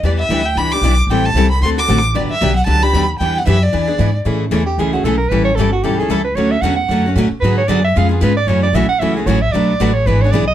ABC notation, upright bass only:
X:1
M:4/4
L:1/8
Q:"Swing" 1/4=227
K:Edor
V:1 name="Upright bass" clef=bass
E,,2 D,,2 C,,2 B,,,2 | A,,,2 =C,,2 D,,2 A,,,2 | G,,, z B,,,2 C,,2 _E,,2 | E,,2 F,,2 E,,2 ^G,,2 |
[K:A] A,,2 E,,2 C,,2 B,,,2 | A,,,2 =G,,,2 B,,,2 C,,2 | D,,2 E,,2 F,,2 A,, z | G,,2 F,,2 ^E,,2 G,,2 |
F,,2 B,,, z C,,2 A,,,2 | B,,,2 A,,,2 G,,,2 B,,,2 |]